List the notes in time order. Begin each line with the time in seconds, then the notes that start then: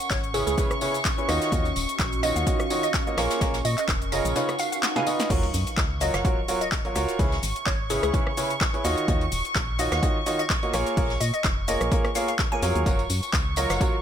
Already playing: C#4 F#5 C#6
0.00 tambourine
0.10 G#1 C#5, kick, snare, clap, closed hi-hat, tambourine, shaker
0.20 B4, closed hi-hat, shaker
0.34 C#3 E4 G#4 B4 C#5, closed hi-hat, open hi-hat, tambourine
0.38 E5
0.47 C#2 G#4, closed hi-hat, tambourine, shaker
0.58 C#3 E4 G#4 B4 C#5, kick, closed hi-hat, tambourine, shaker
0.71 cross-stick, shaker
0.81 C#3 E4 G#4 B4 C#5, closed hi-hat, open hi-hat, tambourine
0.94 closed hi-hat, tambourine, shaker
1.05 kick, snare, clap, closed hi-hat, tambourine, shaker
1.18 E4 G#4 B4 C#5, shaker
1.29 D#2 D#3 F4 F#4 C#5 D#5, cross-stick, closed hi-hat, open hi-hat, tambourine
1.42 snare, closed hi-hat, tambourine, shaker
1.52 D#2 F4 F#4 C#5 D#5, kick, closed hi-hat, tambourine, shaker
1.65 closed hi-hat, tambourine, shaker
1.73 D#1 F#4, closed hi-hat, open hi-hat, tambourine
1.89 closed hi-hat, tambourine, shaker
1.99 A#1, kick, snare, clap, closed hi-hat, tambourine, shaker
2.13 F5, closed hi-hat, shaker
2.23 D#3 F4 F#4 C#5 D#5, closed hi-hat, open hi-hat, tambourine
2.36 D#2 F#5, closed hi-hat, tambourine, shaker
2.47 D#3 F4 F#4 C#5 D#5, kick, closed hi-hat, tambourine, shaker
2.60 cross-stick, shaker
2.70 D#3 F4 F#4 C#5 D#5, closed hi-hat, open hi-hat, tambourine
2.83 D#5, closed hi-hat, tambourine, shaker
2.94 kick, snare, clap, closed hi-hat, tambourine, shaker
3.07 A#3 F4 F#4 C#5 D#5, closed hi-hat, shaker
3.17 A#1 A#3 F4 G#4 A#4 C#5, cross-stick, snare, closed hi-hat, open hi-hat, tambourine
3.31 snare, closed hi-hat, tambourine, shaker
3.41 A#1 A#3 F4 G#4 A#4 C#5, kick, snare, closed hi-hat, tambourine, shaker
3.49 A#4
3.53 G#5, snare, closed hi-hat, tambourine, shaker
3.65 A#2 D#5, closed hi-hat, open hi-hat, tambourine
3.77 D#5, clap, closed hi-hat, tambourine, shaker
3.88 F1, kick, snare, clap, closed hi-hat, tambourine, shaker
4.02 closed hi-hat, shaker
4.12 C#3 F4 G#4 A#4 C#5 D#5, closed hi-hat, open hi-hat, tambourine
4.25 A#1, closed hi-hat, tambourine, shaker
4.36 C#3 D#4 F4 B4 C#5, closed hi-hat, tambourine, swell, shaker
4.49 cross-stick, closed hi-hat, tambourine, shaker
4.59 F5, closed hi-hat, open hi-hat, tambourine
4.71 B4 F5, closed hi-hat, tambourine, shaker
4.79 F5, snare, closed hi-hat, tambourine, shaker
4.83 snare, clap, closed hi-hat
4.96 C#3 D#4 F4 B4 F5 G#5, snare, shaker
5.07 D#4 F4 B4 D#5, closed hi-hat, open hi-hat, tambourine
5.19 snare, closed hi-hat, tambourine, shaker
5.30 F#1 F#3 F4 F#4 A#4 C#5 C#6, kick, closed hi-hat, crash, sub drop, shaker
5.43 closed hi-hat
5.54 F#2, closed hi-hat, open hi-hat, shaker
5.67 closed hi-hat, shaker
5.77 C#2, kick, snare, clap, closed hi-hat, shaker
6.00 F#3 F4 F#4 A#4 C#5 D#5, closed hi-hat, open hi-hat, shaker
6.14 F#1 F#5, cross-stick, snare, closed hi-hat, shaker
6.24 F#3 F4 F#4 A#4 C#5, kick, closed hi-hat, shaker
6.48 F#3 F4 F#4 A#4 C#5, closed hi-hat, open hi-hat, shaker
6.61 D#5, closed hi-hat, shaker
6.72 kick, snare, clap, closed hi-hat, shaker
6.85 F#3 F4 F#4 A#4 C#5, closed hi-hat
6.96 C#2 F4 F#4 A#4 C#5, cross-stick, closed hi-hat, open hi-hat, shaker
7.09 snare, closed hi-hat, shaker
7.19 C#2 C#3 E4 G#4 B4 C#5, kick, closed hi-hat, open hi-hat, shaker
7.32 snare, closed hi-hat
7.43 G#1, closed hi-hat, open hi-hat, shaker
7.56 closed hi-hat, shaker
7.66 G#1 C#5, kick, snare, clap, closed hi-hat, shaker
7.90 C#3 E4 G#4 B4 C#5, closed hi-hat, open hi-hat, shaker
8.03 C#2 G#4, cross-stick, closed hi-hat, shaker
8.14 C#3 E4 G#4 B4 C#5, kick, closed hi-hat, shaker
8.27 cross-stick
8.37 C#3 E4 G#4 B4 C#5, closed hi-hat, open hi-hat, shaker
8.50 closed hi-hat, shaker
8.61 kick, snare, clap, closed hi-hat, shaker
8.74 E4 G#4 B4 C#5, closed hi-hat
8.84 D#2 D#3 F4 F#4 C#5 D#5, closed hi-hat, open hi-hat, shaker
8.98 closed hi-hat, shaker
9.08 D#2 D#3 F4 F#4 C#5 D#5, kick, closed hi-hat, shaker
9.21 closed hi-hat
9.31 D#1, closed hi-hat, open hi-hat, shaker
9.45 closed hi-hat, shaker
9.55 A#1, kick, snare, clap, closed hi-hat, shaker
9.79 D#3 F4 F#4 C#5 D#5, closed hi-hat, open hi-hat, shaker
9.92 D#2 F#5, cross-stick, snare, closed hi-hat, shaker
10.03 D#3 F4 F#4 C#5 D#5, kick, closed hi-hat, shaker
10.26 D#3 F4 F#4 C#5 D#5, closed hi-hat, open hi-hat, shaker
10.39 D#5, closed hi-hat, shaker
10.50 kick, snare, clap, closed hi-hat, shaker
10.62 A#3 F4 F#4 C#5 D#5, closed hi-hat
10.74 A#1 A#3 F4 G#4 A#4 C#5, cross-stick, closed hi-hat, open hi-hat, shaker
10.86 snare, closed hi-hat, shaker
10.97 A#1 A#3 F4 G#4 A#4 C#5, kick, closed hi-hat, open hi-hat, shaker
11.10 snare, closed hi-hat
11.20 A#2 D#5, closed hi-hat, open hi-hat, shaker
11.34 D#5, closed hi-hat, shaker
11.44 F1, kick, snare, clap, closed hi-hat, shaker
11.68 A#3 F4 G#4 A#4 C#5 D#5, closed hi-hat, open hi-hat, shaker
11.81 A#1, cross-stick, closed hi-hat, shaker
11.92 A#3 F4 G#4 A#4 C#5, kick, closed hi-hat, shaker
12.05 cross-stick, closed hi-hat
12.15 A#3 F4 G#4 A#4 C#5 F5, closed hi-hat, open hi-hat, shaker
12.28 F5, closed hi-hat, shaker
12.39 kick, snare, clap, closed hi-hat, shaker
12.52 A#3 F4 G#4 A#4 C#5 G#5, closed hi-hat
12.62 F2 F#3 F4 G#4 A#4 C#5, closed hi-hat, open hi-hat, shaker
12.76 D#2, closed hi-hat, shaker
12.86 F#1 F#3 F4 F#4 A#4 C#5 C#6, kick, closed hi-hat, tambourine, shaker
12.98 closed hi-hat, tambourine
13.10 F#2, closed hi-hat, open hi-hat, tambourine, shaker
13.23 closed hi-hat, tambourine, shaker
13.33 C#2, kick, snare, clap, closed hi-hat, tambourine, shaker
13.56 F#3 F4 F#4 A#4 C#5 D#5, closed hi-hat, open hi-hat, tambourine, shaker
13.69 F#1 F#5, cross-stick, snare, closed hi-hat, tambourine, shaker
13.81 F#3 F4 F#4 A#4 C#5, kick, closed hi-hat, tambourine, shaker